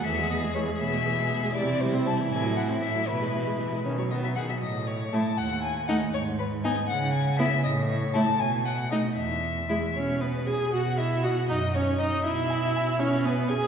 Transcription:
X:1
M:6/8
L:1/16
Q:3/8=79
K:E
V:1 name="Violin"
e2 d2 c2 e6 | =d2 =c2 a2 g2 f2 e2 | B6 z c d e f e | d2 c2 a2 f2 g2 f2 |
c2 B2 g2 f2 g2 e2 | d2 c2 a2 g2 f2 d2 | e6 z6 | [K:B] z2 d2 d2 z2 d2 d2 |
z2 g2 g2 z2 g2 g2 |]
V:2 name="Violin"
G12 | E12- | E6 C2 B,2 G2 | z4 E z4 z D z |
z4 D z4 z E z | z4 E z4 z D z | z4 E z c2 B2 g2 | [K:B] f2 e2 f2 d2 c2 d2 |
e6 c2 B2 g2 |]
V:3 name="Viola" clef=bass
E, G, B, G, E, G, B, G, E, G, B, G, | =C, E, =G, =C G, E, E, F, A, C A, F, | E, G, E, G, E, G, D, F, D, F, D, F, | z4 A, z4 z A, z |
z4 B, z4 z B, z | z4 A, z4 z A, z | z4 G, z C2 B,2 G2 | [K:B] F2 E2 F2 D2 C2 D2 |
E6 C2 B,2 G2 |]
V:4 name="Cello" clef=bass
E,,6 B,,6 | =C,6 A,,6 | B,,6 B,,6 | A,,6 D,,6 |
G,,6 C,6 | A,,6 B,,6 | E,,6 B,,6 | [K:B] B,,6 F,,6 |
B,,6 B,,6 |]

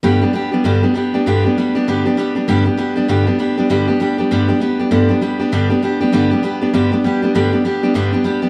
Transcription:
X:1
M:4/4
L:1/8
Q:"Swing" 1/4=198
K:G
V:1 name="Steel-string acoustic guitar"
[G,,D,G,B,DG] [G,B,DG] [G,B,DG] [G,B,DG] [G,,D,G,B,DG] [G,B,DG] [G,B,DG] [G,B,DG] | [G,,D,G,B,DG] [G,B,DG] [G,B,DG] [G,B,DG] [G,,D,G,B,DG] [G,B,DG] [G,B,DG] [G,B,DG] | [G,,D,G,B,DG] [G,B,DG] [G,B,DG] [G,B,DG] [G,,D,G,B,DG] [G,B,DG] [G,B,DG] [G,B,DG] | [G,,D,G,B,DG] [G,B,DG] [G,B,DG] [G,B,DG] [G,,D,G,B,DG] [G,B,DG] [G,B,DG] [G,B,DG] |
[G,,D,G,B,DG] [G,B,DG] [G,B,DG] [G,B,DG] [G,,D,G,B,DG] [G,B,DG] [G,B,DG] [G,B,DG] | [G,,D,G,B,DG] [G,B,DG] [G,B,DG] [G,B,DG] [G,,D,G,B,DG] [G,B,DG] [G,B,DG] [G,B,DG] | [G,,D,G,B,DG] [G,B,DG] [G,B,DG] [G,B,DG] [G,,D,G,B,DG] [G,B,DG] [G,B,DG] [G,B,DG] |]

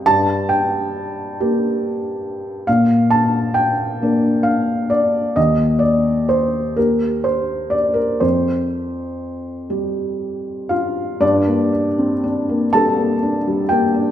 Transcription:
X:1
M:6/8
L:1/16
Q:3/8=42
K:Gm
V:1 name="Felt piano"
a2 g8- g2 | f2 a2 g4 f2 d2 | e2 d2 c2 B2 c2 d B | c8- c2 [Ff]2 |
[Dd]6 [Aa]4 [Gg]2 |]
V:2 name="Felt piano"
G,,6 [B,G]6 | B,,6 [B,D]6 | E,,6 [B,G]6 | F,,6 [G,G]6 |
G,, B, D C D B, G, B, D G, B, D |]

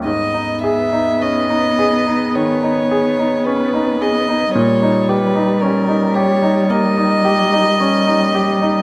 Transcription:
X:1
M:4/4
L:1/16
Q:1/4=55
K:G#m
V:1 name="Violin"
d2 e2 d4 c4 B2 d2 | c2 B2 A2 c2 d8 |]
V:2 name="Grand piano"
G,, D G D C D G D D, D G D C D G D | A,, D =G D C D G D A, D G D C D G D |]
V:3 name="Cello"
B,16 | =G,16 |]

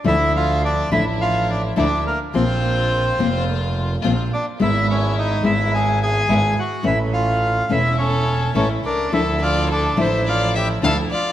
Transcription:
X:1
M:4/4
L:1/8
Q:1/4=106
K:Dm
V:1 name="Violin"
z8 | z8 | z8 | z4 A2 A B |
A d A c d e f d |]
V:2 name="Bandoneon"
[Ee] [Ff] [Dd] [Ee] [Ff] [Dd] [Dd] [B,B] | [Cc]4 z3 [Dd] | [Ee] [^C^c] [_E_e] [=E=e] [^G^g] [Gg]2 [^F^f] | [Ee] [Ff]2 [Ee] [^C^c]2 [Cc] [Dd] |
[Ee] [Ff] [Dd] [Ee] [Ff] [Gg] [Aa] [Ff] |]
V:3 name="String section"
[F,DE]3 [F,DE]3 [F,DE] z | [B,CF]3 [B,CF]3 [B,CF] z | [^G,=B,E]3 [G,B,E]3 [G,B,E] z | [A,^C]3 [A,CE]3 [A,CE] z |
[F,DE]3 [F,DE]3 [F,DE] z |]
V:4 name="Nylon-string guitar"
[D,F,A,DE] z2 [D,F,A,DE] z2 [D,F,A,DE] z | [F,B,CF] z2 [F,B,CF] z2 [F,B,CF] z | [^G,=B,E] z2 [G,B,E] z2 [G,B,E] z | [E,A,^CE] z2 [E,A,CE] z2 [E,A,CE] z |
[D,F,A,DE] z2 [D,F,A,DE] z2 [D,F,A,DE] z |]
V:5 name="Double bass" clef=bass
D,,3 A,,,3 D,, z | B,,,3 F,,,3 B,,, z | ^G,,,3 G,,,3 G,,, z | A,,,3 E,,,3 A,,, C,, |
D,,3 A,,,3 D,, z |]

